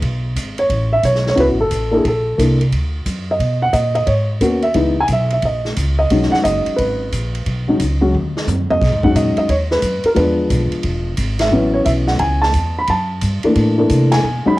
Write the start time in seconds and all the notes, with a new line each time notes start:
0.02 B1, kick, ride
0.36 G#1, kick, hi-hat pedal, ride
0.58 C#5, ride
0.69 A1, kick, ride
0.93 E5
1.03 B1 C#5, kick, hi-hat pedal, ride
1.15 snare
1.26 C#5, snare
1.35 C#2 B3 C#4 E4 F#4, kick, ride
1.40 B4
1.48 A1
1.60 F#1 A4
1.71 A1, kick, hi-hat pedal, ride
1.91 A#3 D4 E4 A4
1.97 G#4
2.05 A#1 A4, kick, ride
2.38 C2 A#3 D4 E4 A4, kick, hi-hat pedal, ride
2.61 ride
2.72 D2, kick, ride
3.06 F#2, kick, hi-hat pedal, ride
3.31 D#5
3.40 B2, kick, ride
3.62 F#5
3.73 A#2 D#5, kick, hi-hat pedal, ride
3.95 D#5, ride
4.07 G#2 C#5, kick, ride
4.41 D#2 A#3 B3 C#4 F#4, kick, hi-hat pedal, ride
4.62 E5, ride
4.74 C#2 E3 G#3 B3 D#4, kick, ride
5.01 G#5
5.08 B1, kick, hi-hat pedal, ride
5.13 E5
5.31 E5, ride
5.42 A#1 D#5, kick, ride
5.65 snare
5.76 C#2, kick, hi-hat pedal, ride
5.99 D#5
6.10 B1 F#3 G#3 C#4 D#4, kick, ride
6.23 snare
6.32 F#5, muted upright bass stroke, snare
6.44 F#1 D#5, kick, hi-hat pedal, ride
6.66 muted upright bass stroke, ride
6.76 G#1 B4, kick, ride
7.12 A#1, kick, hi-hat pedal, ride
7.34 ride
7.46 B1, kick, ride
7.68 F#3 G#3 C#4 D#4
7.79 C#2, kick, hi-hat pedal, ride
8.01 F#3 G#3 C#4 F#4
8.13 D#2, high tom
8.37 snare
8.47 F#2, floor tom, hi-hat pedal
8.70 D#5, floor tom
8.81 B2, kick, snare, ride
8.92 G#2
9.03 F#2 F#3 G#3 C#4 D#4 F#5, kick
9.15 A#2 D#5, kick, hi-hat pedal, ride
9.37 D#5, muted upright bass stroke, ride
9.49 D#2 C#5, kick, ride
9.71 B4, snare
9.82 F#2, kick, hi-hat pedal, ride
10.04 A#4, muted upright bass stroke, ride
10.15 E2 F3 G#3 B3 D4 B4, kick, ride
10.50 B1, kick, hi-hat pedal, ride
10.72 muted upright bass stroke, ride
10.83 E1, kick, ride
11.17 G#1, kick, hi-hat pedal, ride
11.39 E5, snare, ride
11.51 A1 E3 F#3 B3 C#4
11.74 C#5
11.85 B1 E5, kick, hi-hat pedal, ride
12.07 F#5, snare
12.19 C#2 G#5, kick, ride
12.42 A5, snare
12.54 E2, kick, hi-hat pedal, ride
12.78 B5
12.87 F#2 A5, kick, ride
13.21 G2, kick, hi-hat pedal, ride
13.43 E3 A3 A#3 D4, muted upright bass stroke, ride
13.55 A2, kick, ride
13.78 E3 A3 A#3 D4
13.89 C3, kick, hi-hat pedal, ride
14.12 G#5, snare, ride
14.23 B2
14.45 F#3 G#3 C#4 D#4 B5, muted upright bass stroke